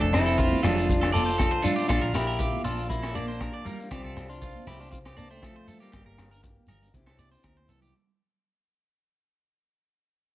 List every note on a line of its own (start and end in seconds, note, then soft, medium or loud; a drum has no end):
0.00 0.53 F1 medium
0.00 1.39 F2 medium
0.00 0.63 F3 soft
0.00 0.10 A3 medium
0.00 0.13 A3 medium
0.00 0.39 D4 medium
0.00 1.89 A4 medium
0.00 0.25 A4 medium
0.13 1.13 A3 medium
0.13 0.60 C4 medium
0.13 0.60 E4 medium
0.13 cross-stick medium
0.13 closed hi-hat soft
0.13 low agogo medium
0.13 shekere medium
0.26 0.38 A4 medium
0.26 closed hi-hat medium
0.26 shekere soft
0.38 1.87 D4 medium
0.38 0.62 F4 medium
0.38 kick medium
0.38 closed hi-hat soft
0.38 shekere medium
0.53 high conga medium
0.63 1.47 F1 medium
0.63 2.65 F3 medium
0.63 1.11 D4 medium
0.63 1.13 F4 loud
0.63 0.87 A4 medium
0.63 cross-stick medium
0.63 closed hi-hat soft
0.63 low conga medium
0.63 low agogo medium
0.63 shekere medium
0.78 closed hi-hat medium
0.78 shekere soft
0.89 kick medium
0.89 closed hi-hat soft
0.89 shekere medium
1.01 1.12 A4 medium
1.01 cross-stick medium
1.01 low agogo medium
1.12 1.61 F4 medium
1.12 1.66 A4 loud
1.12 1.25 D5 medium
1.12 muted steel-string acoustic guitar stroke medium
1.12 closed hi-hat soft
1.12 high conga medium
1.12 shekere medium
1.26 1.38 C5 medium
1.26 closed hi-hat medium
1.38 1.64 G2 medium
1.38 1.51 A4 medium
1.38 kick medium
1.38 cross-stick medium
1.38 closed hi-hat soft
1.38 low agogo medium
1.38 shekere medium
1.51 1.63 C5 medium
1.62 1.90 A2 medium
1.62 1.88 D4 medium
1.62 1.87 F4 medium
1.62 1.75 A4 medium
1.62 closed hi-hat medium
1.62 low conga medium
1.62 shekere medium
1.76 1.88 G4 medium
1.76 closed hi-hat medium
1.76 shekere soft
1.88 2.01 A#1 medium
1.88 3.15 A#2 medium
1.88 2.13 D4 medium
1.88 3.41 D4 medium
1.88 2.14 F4 loud
1.88 2.02 A4 medium
1.88 kick medium
1.88 cross-stick medium
1.88 closed hi-hat medium
1.88 low agogo medium
1.88 shekere medium
2.01 2.54 A#1 medium
2.01 2.26 A#4 medium
2.14 3.14 A#3 medium
2.14 2.62 E4 medium
2.14 2.61 G4 medium
2.14 cross-stick medium
2.14 closed hi-hat medium
2.14 low agogo medium
2.14 shekere loud
2.27 2.39 A#4 medium
2.27 closed hi-hat medium
2.27 shekere soft
2.39 3.65 F4 medium
2.39 2.63 G4 medium
2.39 kick medium
2.39 closed hi-hat soft
2.39 shekere medium
2.53 high conga medium
2.64 3.48 A#1 medium
2.64 3.88 F3 medium
2.64 2.88 D4 medium
2.64 2.88 F4 loud
2.64 2.89 A4 medium
2.64 closed hi-hat medium
2.64 low agogo medium
2.64 shekere medium
2.78 closed hi-hat medium
2.78 shekere soft
2.90 3.14 A#3 medium
2.90 3.13 E4 medium
2.90 kick medium
2.90 closed hi-hat soft
2.90 shekere medium
3.03 3.14 A4 medium
3.03 cross-stick medium
3.03 low agogo medium
3.15 3.91 F2 medium
3.15 3.62 A#3 medium
3.15 3.88 A#3 medium
3.15 3.67 D4 medium
3.15 3.28 D5 medium
3.15 closed hi-hat soft
3.15 high conga medium
3.15 shekere medium
3.28 3.40 C5 medium
3.28 closed hi-hat soft
3.40 3.89 D4 medium
3.40 3.53 A#4 medium
3.40 kick medium
3.40 cross-stick medium
3.40 closed hi-hat soft
3.40 low agogo medium
3.40 shekere medium
3.54 3.65 D5 medium
3.65 3.89 G3 medium
3.65 3.89 A#3 medium
3.65 3.91 F4 medium
3.65 3.78 A#4 medium
3.65 closed hi-hat medium
3.65 low conga medium
3.65 shekere medium
3.80 closed hi-hat soft
3.80 shekere soft
3.91 4.02 C2 medium
3.91 4.67 C3 medium
3.91 4.65 F3 medium
3.91 4.27 G3 medium
3.91 4.29 C4 medium
3.91 4.15 C4 medium
3.91 5.42 F4 medium
3.91 4.04 G4 medium
3.91 kick medium
3.91 cross-stick medium
3.91 closed hi-hat soft
3.91 low agogo medium
3.91 shekere medium
4.04 4.56 C2 medium
4.04 4.28 A4 medium
4.16 4.40 C4 medium
4.16 cross-stick medium
4.16 closed hi-hat soft
4.16 low agogo medium
4.16 shekere loud
4.29 4.64 D4 medium
4.29 4.64 F4 medium
4.29 closed hi-hat soft
4.29 shekere soft
4.41 5.17 C4 medium
4.41 4.65 F4 medium
4.41 kick medium
4.41 closed hi-hat soft
4.41 shekere medium
4.56 high conga medium
4.66 5.50 C2 medium
4.66 5.89 F3 medium
4.66 4.79 C4 medium
4.66 4.80 E4 medium
4.66 4.91 G4 medium
4.66 cross-stick medium
4.66 closed hi-hat medium
4.66 low conga medium
4.66 low agogo medium
4.66 shekere medium
4.80 4.90 D4 medium
4.80 4.90 F4 medium
4.80 closed hi-hat soft
4.80 shekere soft
4.91 4.98 C4 medium
4.91 4.98 F4 medium
4.91 kick medium
4.91 closed hi-hat soft
4.91 shekere medium
5.05 5.16 G4 medium
5.05 cross-stick medium
5.05 low agogo medium
5.17 5.90 G2 medium
5.17 5.29 A#3 medium
5.17 5.90 C4 medium
5.17 5.31 D4 medium
5.17 5.29 D5 medium
5.17 closed hi-hat medium
5.17 high conga medium
5.17 shekere loud
5.31 5.41 A3 medium
5.31 5.42 C4 medium
5.31 5.42 C5 medium
5.31 closed hi-hat soft
5.42 5.78 F3 medium
5.42 5.82 A3 medium
5.42 5.67 F4 medium
5.42 5.55 A4 medium
5.42 kick medium
5.42 cross-stick medium
5.42 closed hi-hat soft
5.42 low agogo medium
5.42 shekere medium
5.56 5.67 C5 medium
5.68 5.93 F4 medium
5.68 5.80 A4 medium
5.68 closed hi-hat medium
5.68 low conga medium
5.68 shekere medium
5.80 6.28 G3 medium
5.80 6.28 A#3 medium
5.80 5.91 G4 medium
5.80 closed hi-hat medium
5.80 shekere soft
5.92 6.04 G1 medium
5.92 6.90 G2 medium
5.92 6.05 G4 medium
5.92 6.43 G4 medium
5.92 kick medium
5.92 cross-stick medium
5.92 closed hi-hat medium
5.92 low agogo medium
5.92 shekere medium
6.06 6.57 G1 medium
6.06 6.30 A#4 medium
6.18 6.91 A#3 medium
6.18 cross-stick medium
6.18 closed hi-hat medium
6.18 low agogo medium
6.18 shekere loud
6.31 6.42 A#4 medium
6.31 closed hi-hat medium
6.31 shekere soft
6.43 6.91 G4 medium
6.43 muted clean electric guitar stroke medium
6.43 kick medium
6.43 closed hi-hat soft
6.43 shekere medium
6.57 high conga medium
6.67 6.89 G1 medium
6.67 6.91 G3 medium
6.67 6.92 A#4 medium
6.67 closed hi-hat medium
6.67 low conga medium
6.67 low agogo medium
6.67 shekere medium
6.82 closed hi-hat soft
6.82 shekere soft
6.94 7.35 C2 loud
6.94 7.69 C3 medium
6.94 7.68 E3 medium
6.94 7.18 C4 medium
6.94 7.92 E4 medium
6.94 7.44 G4 medium
6.94 kick medium
6.94 closed hi-hat medium
6.94 high conga medium
6.94 shekere medium
7.06 7.18 A4 medium
7.06 cross-stick medium
7.06 low agogo medium
7.19 7.91 C4 medium
7.19 7.31 D5 medium
7.19 closed hi-hat soft
7.19 high conga medium
7.19 shekere loud
7.31 7.43 C5 medium
7.31 closed hi-hat soft
7.31 shekere soft
7.43 7.67 D2 medium
7.43 7.56 A#4 medium
7.43 kick medium
7.43 cross-stick medium
7.43 closed hi-hat soft
7.43 high conga medium
7.43 low agogo medium
7.43 shekere medium
7.57 7.68 C5 medium
7.57 high conga soft
7.69 7.91 C2 medium
7.69 7.91 E3 medium
7.69 7.81 A4 medium
7.69 closed hi-hat medium
7.69 low conga medium
7.69 shekere medium
7.81 7.93 G4 medium
7.81 closed hi-hat medium
7.81 low conga medium
7.81 shekere soft